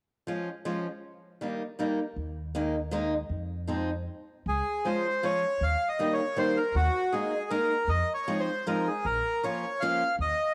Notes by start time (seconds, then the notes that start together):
0.27 F3 G#3 C#4 F4
0.65 F3 G#3 C#4 F4
1.41 D#3 G3 A#3 D#4
1.79 D#3 G3 A#3 D#4
2.16 D#2
2.55 D#3 G#3 A#3 D#4
2.91 D#3 G#3 A#3 D#4
3.29 F2
3.67 F3 G#3 C4 D#4
4.46 C#2 G#4
4.85 F3 G#3 C#4 F4 C5
5.23 F3 G#3 C#4 F4 C#5
5.61 D#2 F5
5.88 D#5
5.99 D#3 G3 A#3 D#4
6.13 C#5
6.37 D#3 G3 A#3 D#4 C5
6.57 A#4
6.75 D#2 F#4
7.12 D#3 G#3 A#3 D#4 G#4
7.50 D#3 G#3 A#3 D#4 A#4
7.88 F2 D#5
8.14 C#5
8.28 F3 G#3 C4 D#4
8.40 C5
8.67 F3 G#3 C4 D#4 A#4
8.87 G#4
9.05 A#1 A#4
9.43 F3 A#3 C#4 F4 C#5
9.80 F3 A#3 C#4 F4 F5
10.19 D#2 D#5